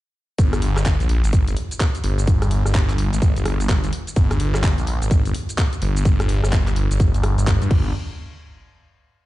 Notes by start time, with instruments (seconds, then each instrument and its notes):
0.38 detuned saw bass G1, kick, closed hi-hat, shaker
0.53 cross-stick, closed hi-hat, shaker
0.62 detuned saw bass G1, open hi-hat
0.77 cross-stick, clap, shaker
0.86 kick, clap, closed hi-hat, shaker
1.00 detuned saw bass A#1, closed hi-hat, shaker
1.09 open hi-hat
1.24 detuned saw bass G#1, closed hi-hat, shaker
1.33 kick, closed hi-hat, shaker
1.48 detuned saw bass G1, closed hi-hat, shaker
1.57 open hi-hat
1.71 closed hi-hat, shaker
1.80 kick, clap, closed hi-hat, shaker
1.95 closed hi-hat, shaker
2.04 detuned saw bass G1, open hi-hat
2.18 closed hi-hat, shaker
2.27 detuned saw bass G1, kick, closed hi-hat, shaker
2.42 cross-stick, closed hi-hat, shaker
2.51 open hi-hat
2.66 detuned saw bass G1, cross-stick, shaker
2.75 kick, clap, closed hi-hat, shaker
2.89 clap, closed hi-hat, shaker
2.98 open hi-hat
3.13 detuned saw bass G#1, closed hi-hat, shaker
3.22 kick, closed hi-hat, shaker
3.36 detuned saw bass G1, closed hi-hat, shaker
3.46 detuned saw bass G1, cross-stick, open hi-hat
3.60 closed hi-hat, shaker
3.69 kick, clap, closed hi-hat, shaker
3.84 detuned saw bass G1, closed hi-hat, shaker
3.93 open hi-hat
4.07 closed hi-hat, shaker
4.16 detuned saw bass G1, kick, closed hi-hat, shaker
4.31 cross-stick, closed hi-hat, shaker
4.40 detuned saw bass G1, open hi-hat
4.54 cross-stick, clap, shaker
4.64 kick, clap, closed hi-hat, shaker
4.78 detuned saw bass A#1, closed hi-hat, shaker
4.87 open hi-hat
5.02 detuned saw bass G#1, closed hi-hat, shaker
5.11 kick, closed hi-hat, shaker
5.25 detuned saw bass G1, closed hi-hat, shaker
5.35 open hi-hat
5.49 closed hi-hat, shaker
5.58 kick, clap, closed hi-hat, shaker
5.73 closed hi-hat, shaker
5.82 detuned saw bass G1, open hi-hat
5.96 closed hi-hat, shaker
6.05 detuned saw bass G1, kick, closed hi-hat, shaker
6.20 cross-stick, closed hi-hat, shaker
6.29 open hi-hat
6.44 detuned saw bass G1, cross-stick, shaker
6.53 kick, clap, closed hi-hat, shaker
6.67 clap, closed hi-hat, shaker
6.76 open hi-hat
6.91 detuned saw bass G1, closed hi-hat, shaker
7.00 kick, closed hi-hat, shaker
7.14 detuned saw bass G1, closed hi-hat, shaker
7.23 cross-stick, open hi-hat
7.38 detuned saw bass G1, closed hi-hat, shaker
7.47 kick, clap, closed hi-hat, shaker
7.62 detuned saw bass G2, closed hi-hat, shaker
7.71 detuned saw bass G1, kick, crash